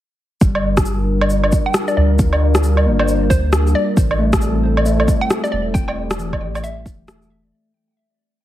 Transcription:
0.41 G1 G3 D4 F4 A#4, kick, shaker
0.55 low woodblock
0.77 kick, cross-stick, shaker
0.86 shaker
1.21 low woodblock
1.30 shaker
1.44 low woodblock
1.52 kick, shaker
1.66 G5
1.74 cross-stick, shaker
1.88 D5, shaker
1.97 D2 D5
2.19 kick, shaker
2.33 low woodblock
2.55 cross-stick, shaker
2.63 shaker
2.77 low woodblock
2.86 G1 A#3
2.99 C5, low woodblock
3.08 shaker
3.30 D2 C5, kick, shaker
3.53 cross-stick, shaker
3.67 shaker
3.75 D5
3.97 A1 C4 E4 A4, kick, shaker
4.11 low woodblock
4.19 A3
4.33 kick, cross-stick, shaker
4.41 shaker
4.77 low woodblock
4.85 A3, shaker
5.00 low woodblock
5.08 kick, shaker
5.21 G5
5.31 cross-stick, shaker
5.44 D5, shaker
5.52 E1 D5
5.74 G4 G5, kick, shaker
5.88 G5, low woodblock
6.11 cross-stick, shaker
6.18 E3, shaker
6.33 kick, low woodblock
6.41 A1
6.55 low woodblock, shaker
6.64 E5, shaker
6.86 E1, kick, shaker
7.08 E1 A3, cross-stick, shaker
7.22 shaker

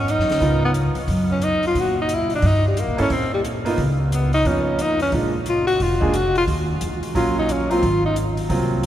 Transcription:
Already playing: G#2 C#4
0.08 D#4, closed hi-hat
0.18 F#2, snare
0.30 D2, snare, open hi-hat
0.41 C#2 B3 D#4 F4 A#4, kick, open hi-hat
0.65 B3
0.74 closed hi-hat
0.95 muted upright bass stroke, open hi-hat
1.08 F#2, kick, open hi-hat
1.32 C#4
1.42 D#4, closed hi-hat
1.63 open hi-hat
1.67 F4
1.75 A#2, kick, open hi-hat
1.80 F#4
2.02 D#4
2.09 closed hi-hat
2.15 E4
2.30 open hi-hat
2.35 D4
2.42 G2, kick, open hi-hat
2.47 D#4
2.68 G3
2.77 A#3, closed hi-hat
2.88 A#2
2.97 G#2 A#3 C#4 E4 A4, open hi-hat
3.02 C#4
3.10 A#2 C4, kick, open hi-hat
3.34 G3
3.45 closed hi-hat
3.65 A#3 B3 D#4 F4, open hi-hat
3.78 C#2, kick, open hi-hat
4.12 B3, closed hi-hat
4.33 D#4, open hi-hat
4.45 F2 A#3 B3 C#4 D#4 F4, kick, open hi-hat
4.79 D#4, closed hi-hat
5.00 C#4, open hi-hat
5.12 A#1 G#3 A#3 D4 F4, kick, open hi-hat
5.46 F4, closed hi-hat
5.67 F#4, open hi-hat
5.80 F1 F4, kick, open hi-hat
6.01 G#3 A#3 D4 G#4, kick
6.14 F#4, closed hi-hat
6.35 F4, open hi-hat
6.47 D#2, kick, open hi-hat
6.81 E2, closed hi-hat
7.03 open hi-hat
7.15 A#1 F#3 A#3 C#4 F4, kick, open hi-hat
7.39 D#4
7.49 C#4, closed hi-hat
7.71 F#3 A#3 C4 F4, open hi-hat
7.83 G#1, kick, open hi-hat
8.06 D#4
8.16 closed hi-hat
8.37 open hi-hat
8.49 C2 F#3 A#3 C4 F4, kick, open hi-hat

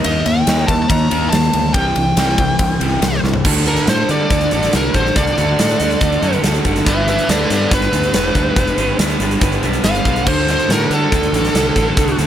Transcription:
0.04 D#2 D#3 A#3 D#4 D#5, ride
0.26 D#2 D#3 A#3 G5, ride
0.47 D#2 D#3 A#3 D#4, snare, ride
0.68 D#2 D#3 A#3 A5, kick, ride
0.82 A5
0.88 D#2 D#3 A#3 A#5, kick, ride
1.11 D#2 D#3 A#3 D#4, ride
1.29 D#2 D#3 A#3 A5, snare, ride
1.44 snare
1.53 D2 D#3 A#3, ride
1.74 C2 C3 E3 G3 G5, kick, ride
1.96 C2 C3 E3, ride
2.17 C2 C3 E3 G3, snare, ride
2.38 C2 C3 E3, kick, ride
2.59 C2 C3 E3, kick, ride
2.80 C2 C3 E3 G3, ride
3.01 C2 C3 E3, snare, ride
3.14 snare
3.23 C2 C3 E3, snare
3.34 floor tom
3.45 D2 D3 D4 F#4 A4, kick, crash
3.66 D3 D4 F#4 A4 A#4, closed hi-hat
3.77 closed hi-hat
3.87 A2 D3 D4 F#4 A4 C5, snare, closed hi-hat
4.09 D3 D4 F#4 A4 D5, closed hi-hat
4.30 D2 D3 D4 F#4 A4, kick, closed hi-hat
4.41 closed hi-hat
4.51 A1 D3 D4 F#4 A4, closed hi-hat
4.63 snare, closed hi-hat
4.73 C2 D3 D4 F#4 A4 A#4, snare, closed hi-hat
4.94 A1 D3 D4 F#4 A4 C5, kick, closed hi-hat
5.06 snare
5.15 C2 D3 D4 F#4 A4 D5, kick, closed hi-hat
5.27 closed hi-hat
5.38 D2 D3 D4 F#4 A4, closed hi-hat
5.58 A2 D3 D4 F#4 A4, snare, closed hi-hat
5.69 closed hi-hat
5.80 D2 D3 D4 F#4 A4, closed hi-hat
5.91 closed hi-hat
6.00 D2 D3 D4 F#4 A4, kick, closed hi-hat
6.12 closed hi-hat
6.22 F#2 D3 D4 F#4 A4, closed hi-hat
6.33 closed hi-hat
6.43 D2 D3 D4 F#4 A4, snare, closed hi-hat
6.55 closed hi-hat
6.65 F#1 D3 D4 F#4 A4, kick, closed hi-hat
6.76 snare, closed hi-hat
6.85 G1 G3 B3 D4 B4, kick, closed hi-hat
6.89 E5
7.07 G3 B3 D4 B4 E5, closed hi-hat
7.19 closed hi-hat
7.29 D2 G3 B3 D4 A4 B4 D5, snare, closed hi-hat
7.50 G2 G3 B3 D4 A4 B4 D5, closed hi-hat
7.71 G1 G3 B3 D4 B4, kick, closed hi-hat
7.82 closed hi-hat
7.92 D2 G3 B3 D4 B4, closed hi-hat
8.03 closed hi-hat
8.14 E1 G3 B3 D4 B4, snare, closed hi-hat
8.35 D2 G3 B3 D4 B4, kick, closed hi-hat
8.56 E1 G3 B3 D4 B4, kick, closed hi-hat
8.67 closed hi-hat
8.77 G1 G3 B3 D4 B4, closed hi-hat
8.99 D2 G3 B3 D4 B4, snare, closed hi-hat
9.10 closed hi-hat
9.20 G1 G3 B3 D4 B4, closed hi-hat
9.31 closed hi-hat
9.41 G1 G3 B3 D4 B4, kick, closed hi-hat
9.52 closed hi-hat
9.63 B1 G3 B3 D4 B4, closed hi-hat
9.73 closed hi-hat
9.84 G1 G3 B3 D4 B4 F5, snare, closed hi-hat
9.95 closed hi-hat
10.05 B1 G3 B3 D4 B4, kick, closed hi-hat
10.16 closed hi-hat
10.25 D2 D3 D4 F#4 A4 C5, kick, crash
10.47 D3 D4 F#4 A4, snare, closed hi-hat
10.51 C5
10.59 closed hi-hat
10.69 A2 D3 D4 F#4 A4 A#4, snare, closed hi-hat
10.90 D3 D4 F#4 A4, closed hi-hat
11.12 D2 D3 D4 F#4 A4, kick, closed hi-hat
11.23 closed hi-hat
11.33 A1 D3 D4 F#4 A4, closed hi-hat
11.45 snare, closed hi-hat
11.54 C2 D3 D4 F#4 A4, snare, closed hi-hat
11.75 A1 D3 D4 F#4 A4, kick, closed hi-hat
11.97 C2 D3 D4 F#4 A4, kick, closed hi-hat
12.08 closed hi-hat
12.19 D2 D3 D4 F#4 A4, snare, closed hi-hat

